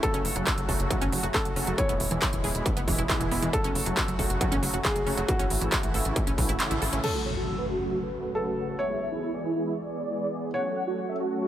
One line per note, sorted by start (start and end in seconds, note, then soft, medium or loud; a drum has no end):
0.03 0.18 C#3 medium
0.03 0.18 F#3 medium
0.03 0.08 F#3 medium
0.03 0.18 A3 medium
0.03 0.18 F#4 medium
0.03 0.60 A4 loud
0.03 kick loud
0.03 closed hi-hat medium
0.14 0.21 F#1 medium
0.14 0.19 C#4 loud
0.14 closed hi-hat soft
0.25 0.32 F#1 loud
0.25 open hi-hat loud
0.35 0.43 F#1 medium
0.35 0.51 C#3 medium
0.35 0.51 F#3 medium
0.35 0.40 F#3 medium
0.35 0.51 A3 loud
0.35 0.51 F#4 medium
0.35 closed hi-hat medium
0.47 0.51 F#4 medium
0.47 kick loud
0.47 clap loud
0.47 closed hi-hat medium
0.58 0.65 F#1 medium
0.58 0.73 C#3 medium
0.58 0.73 F#3 medium
0.58 0.60 F#3 medium
0.58 0.73 A3 medium
0.58 0.73 F#4 medium
0.58 closed hi-hat medium
0.69 0.76 F#1 medium
0.69 0.73 A4 medium
0.69 kick medium
0.69 open hi-hat medium
0.79 0.87 F#1 medium
0.79 0.95 C#3 medium
0.79 0.95 F#3 medium
0.79 0.95 A3 medium
0.79 0.95 F#4 medium
0.79 closed hi-hat soft
0.90 0.95 F#3 medium
0.90 kick loud
0.90 closed hi-hat medium
1.01 1.08 G#1 medium
1.01 1.06 C#4 loud
1.01 closed hi-hat medium
1.12 1.19 F#1 loud
1.12 1.28 C#3 medium
1.12 1.28 F#3 medium
1.12 1.17 F#3 medium
1.12 1.28 A3 medium
1.12 1.28 F#4 medium
1.12 open hi-hat loud
1.23 1.30 F#1 medium
1.23 1.28 F#4 medium
1.23 closed hi-hat soft
1.34 1.50 C#3 medium
1.34 1.50 F#3 medium
1.34 1.50 A3 medium
1.34 1.50 F#4 medium
1.34 1.76 A4 medium
1.34 kick loud
1.34 clap loud
1.34 closed hi-hat medium
1.45 1.52 F#1 medium
1.45 1.50 F#3 medium
1.45 closed hi-hat soft
1.56 1.63 F#1 loud
1.56 1.72 C#3 medium
1.56 1.72 F#3 loud
1.56 1.71 A3 loud
1.56 1.61 C#4 medium
1.56 1.72 F#4 medium
1.56 open hi-hat medium
1.67 1.74 F#1 medium
1.67 1.74 F#3 medium
1.67 closed hi-hat soft
1.78 1.93 B2 medium
1.78 1.93 E3 medium
1.78 1.83 E3 medium
1.78 1.93 G#3 loud
1.78 1.93 E4 medium
1.78 3.45 C#5 medium
1.78 kick loud
1.78 closed hi-hat medium
1.89 1.96 E1 medium
1.89 1.94 B3 loud
1.89 closed hi-hat medium
2.00 2.07 E1 loud
2.00 open hi-hat loud
2.11 2.18 E1 medium
2.11 2.26 B2 medium
2.11 2.26 E3 medium
2.11 2.16 E3 medium
2.11 2.26 G#3 medium
2.11 2.26 E4 medium
2.11 closed hi-hat medium
2.22 2.27 E4 medium
2.22 kick loud
2.22 clap loud
2.22 closed hi-hat medium
2.33 2.40 E1 medium
2.33 2.48 B2 medium
2.33 2.48 E3 medium
2.33 2.36 E3 medium
2.33 2.48 G#3 medium
2.33 2.48 E4 medium
2.33 closed hi-hat medium
2.44 2.51 E1 loud
2.44 2.49 G#4 medium
2.44 open hi-hat medium
2.55 2.62 E1 medium
2.55 2.70 B2 medium
2.55 2.70 E3 medium
2.55 2.70 G#3 medium
2.55 2.70 E4 medium
2.55 closed hi-hat medium
2.66 2.70 E3 medium
2.66 kick loud
2.66 closed hi-hat medium
2.77 2.84 F#1 medium
2.77 2.81 B3 medium
2.77 closed hi-hat medium
2.88 2.95 E1 loud
2.88 3.03 B2 medium
2.88 2.92 E3 medium
2.88 3.03 E3 medium
2.88 3.03 G#3 medium
2.88 3.03 E4 medium
2.88 kick medium
2.88 open hi-hat loud
2.98 3.06 E1 medium
2.98 3.03 E4 medium
2.98 closed hi-hat soft
3.09 3.25 B2 medium
3.09 3.25 E3 medium
3.09 3.25 G#3 medium
3.09 3.25 E4 medium
3.09 kick loud
3.09 clap loud
3.09 closed hi-hat medium
3.20 3.27 E1 medium
3.20 3.25 E3 medium
3.20 closed hi-hat soft
3.31 3.38 E1 loud
3.31 3.47 B2 loud
3.31 3.47 E3 loud
3.31 3.47 G#3 medium
3.31 3.36 B3 medium
3.31 3.47 E4 medium
3.31 open hi-hat medium
3.42 3.49 E1 medium
3.42 3.49 E3 medium
3.42 closed hi-hat medium
3.53 3.69 C#3 medium
3.53 3.58 F#3 medium
3.53 3.69 F#3 loud
3.53 3.69 A3 medium
3.53 3.69 F#4 medium
3.53 4.10 A4 loud
3.53 kick loud
3.53 closed hi-hat medium
3.64 3.71 F#1 medium
3.64 3.69 C#4 loud
3.64 closed hi-hat soft
3.75 3.82 F#1 loud
3.75 open hi-hat loud
3.86 3.93 F#1 medium
3.86 4.01 C#3 medium
3.86 3.91 F#3 medium
3.86 4.02 F#3 medium
3.86 4.01 A3 medium
3.86 4.01 F#4 medium
3.86 closed hi-hat medium
3.97 4.02 F#4 medium
3.97 kick loud
3.97 clap loud
3.97 closed hi-hat medium
4.08 4.15 F#1 medium
4.08 4.23 C#3 medium
4.08 4.11 F#3 medium
4.08 4.23 F#3 medium
4.08 4.23 A3 medium
4.08 4.23 F#4 medium
4.08 closed hi-hat medium
4.19 4.26 F#1 medium
4.19 4.24 A4 medium
4.19 kick medium
4.19 open hi-hat medium
4.30 4.37 F#1 loud
4.30 4.45 C#3 medium
4.30 4.45 F#3 medium
4.30 4.45 A3 medium
4.30 4.45 F#4 medium
4.30 closed hi-hat medium
4.41 4.45 F#3 medium
4.41 kick loud
4.41 closed hi-hat medium
4.52 4.59 G#1 medium
4.52 4.56 C#4 loud
4.52 closed hi-hat medium
4.63 4.70 F#1 loud
4.63 4.78 C#3 medium
4.63 4.67 F#3 medium
4.63 4.78 F#3 medium
4.63 4.78 A3 medium
4.63 4.78 F#4 medium
4.63 open hi-hat loud
4.74 4.81 F#1 medium
4.74 4.78 F#4 medium
4.74 closed hi-hat medium
4.85 5.00 C#3 loud
4.85 5.00 F#3 medium
4.85 5.00 A3 medium
4.85 5.00 F#4 medium
4.85 5.26 G#4 medium
4.85 kick loud
4.85 clap loud
4.85 closed hi-hat medium
4.96 5.03 F#1 medium
4.96 5.00 F#3 medium
4.96 closed hi-hat medium
5.06 5.14 F#1 loud
5.06 5.22 C#3 medium
5.06 5.22 F#3 medium
5.06 5.22 A3 medium
5.06 5.11 C#4 medium
5.06 5.22 F#4 medium
5.06 open hi-hat medium
5.17 5.25 F#1 medium
5.17 5.24 F#3 medium
5.17 closed hi-hat medium
5.28 5.44 C#3 medium
5.28 5.44 E3 medium
5.28 5.33 E3 medium
5.28 5.44 A3 medium
5.28 5.44 E4 medium
5.28 6.95 F#4 medium
5.28 kick loud
5.28 closed hi-hat medium
5.39 5.47 A1 medium
5.39 5.44 C#4 loud
5.39 closed hi-hat medium
5.50 5.58 A1 loud
5.50 open hi-hat loud
5.61 5.68 A1 medium
5.61 5.77 C#3 loud
5.61 5.77 E3 medium
5.61 5.66 E3 medium
5.61 5.77 A3 medium
5.61 5.77 E4 medium
5.61 closed hi-hat medium
5.72 5.77 E4 medium
5.72 kick loud
5.72 clap loud
5.72 closed hi-hat medium
5.83 5.90 A1 medium
5.83 5.98 C#3 medium
5.83 5.86 E3 medium
5.83 5.98 E3 medium
5.83 5.98 A3 medium
5.83 5.98 E4 medium
5.83 closed hi-hat medium
5.94 6.01 A1 loud
5.94 5.99 A4 medium
5.94 open hi-hat medium
6.05 6.12 A1 loud
6.05 6.21 C#3 medium
6.05 6.21 E3 medium
6.05 6.20 A3 medium
6.05 6.20 E4 medium
6.05 closed hi-hat medium
6.16 6.21 E3 medium
6.16 kick loud
6.16 closed hi-hat medium
6.27 6.34 B1 medium
6.27 6.32 C#4 medium
6.27 closed hi-hat medium
6.38 6.45 B1 loud
6.38 6.53 C#3 medium
6.38 6.43 E3 medium
6.38 6.53 E3 medium
6.38 6.53 A3 medium
6.38 6.53 E4 medium
6.38 kick medium
6.38 open hi-hat loud
6.49 6.56 A1 medium
6.49 6.56 E4 medium
6.49 closed hi-hat medium
6.60 6.75 C#3 medium
6.60 6.75 E3 medium
6.60 6.75 A3 medium
6.60 6.75 E4 medium
6.60 clap loud
6.60 closed hi-hat medium
6.71 6.78 A1 medium
6.71 6.78 E4 medium
6.71 closed hi-hat medium
6.82 6.89 A1 loud
6.82 6.97 C#3 medium
6.82 6.97 E3 loud
6.82 6.97 A3 loud
6.82 6.97 E4 loud
6.82 6.89 A4 medium
6.82 open hi-hat medium
6.93 7.00 A1 medium
6.93 7.00 C#4 medium
6.93 closed hi-hat medium
7.04 7.19 C#3 medium
7.04 7.19 F#3 medium
7.04 7.19 A3 medium
7.04 7.19 F#4 medium
7.04 7.61 A4 medium
7.04 7.11 C#5 medium
7.04 crash medium
7.04 impact medium
7.15 7.22 F#4 medium
7.26 7.33 C#5 medium
7.37 7.52 C#3 medium
7.37 7.52 F#3 medium
7.37 7.52 A3 medium
7.37 7.44 F#4 medium
7.37 7.52 F#4 medium
7.47 7.55 F#4 medium
7.58 7.74 C#3 medium
7.58 7.74 F#3 medium
7.58 7.74 A3 medium
7.58 7.74 F#4 medium
7.58 7.66 B4 medium
7.69 7.77 F#4 medium
7.80 7.96 C#3 medium
7.80 7.96 F#3 medium
7.80 7.96 A3 medium
7.80 7.88 F#4 medium
7.80 7.96 F#4 medium
7.91 7.99 F#4 medium
8.02 8.70 B4 loud
8.13 8.29 C#3 medium
8.13 8.29 F#3 medium
8.13 8.29 A3 medium
8.13 8.29 F#4 medium
8.35 8.51 C#3 medium
8.35 8.51 F#3 medium
8.35 8.51 A3 medium
8.35 8.51 F#4 medium
8.35 8.77 A4 medium
8.57 8.72 C#3 medium
8.57 8.72 F#3 medium
8.57 8.72 A3 medium
8.57 8.72 F#4 medium
8.79 8.94 E3 medium
8.79 8.94 G#3 medium
8.79 8.94 B3 medium
8.79 8.94 G#4 medium
8.79 10.45 C#5 medium
8.79 8.86 E5 medium
8.90 8.97 E4 medium
9.01 9.08 E5 medium
9.12 9.27 E3 medium
9.12 9.27 G#3 medium
9.12 9.27 B3 medium
9.12 9.19 E4 medium
9.12 9.27 G#4 medium
9.23 9.30 E4 medium
9.34 9.49 E3 medium
9.34 9.49 G#3 medium
9.34 9.49 B3 medium
9.34 9.49 G#4 medium
9.34 9.41 D5 medium
9.45 9.52 E4 medium
9.55 9.71 E3 medium
9.55 9.71 G#3 medium
9.55 9.71 B3 medium
9.55 9.63 E4 medium
9.55 9.71 G#4 medium
9.67 9.74 E4 medium
9.78 10.45 D5 loud
9.88 10.04 E3 medium
9.88 10.04 G#3 medium
9.88 10.04 B3 medium
9.88 10.04 G#4 medium
10.10 10.26 E3 medium
10.10 10.26 G#3 medium
10.10 10.26 B3 medium
10.10 10.26 G#4 medium
10.32 10.47 E3 medium
10.32 10.47 G#3 medium
10.32 10.47 B3 medium
10.32 10.47 G#4 medium
10.54 10.69 F#3 medium
10.54 10.69 A3 medium
10.54 10.69 C#4 medium
10.54 10.69 A4 medium
10.54 11.11 C#5 medium
10.54 10.61 F#5 medium
10.65 10.72 F#4 medium
10.76 10.83 F#5 medium
10.87 11.02 F#3 medium
10.87 11.02 A3 medium
10.87 11.02 C#4 medium
10.87 10.94 F#4 medium
10.87 11.02 A4 medium
10.98 11.05 F#4 medium
11.09 11.24 F#3 medium
11.09 11.24 A3 medium
11.09 11.24 C#4 medium
11.09 11.24 A4 medium
11.09 11.16 E5 medium
11.20 11.27 F#4 medium
11.31 11.46 F#3 medium
11.31 11.46 A3 medium
11.31 11.46 C#4 medium
11.31 11.38 F#4 medium
11.31 11.46 A4 medium
11.42 11.48 F#4 medium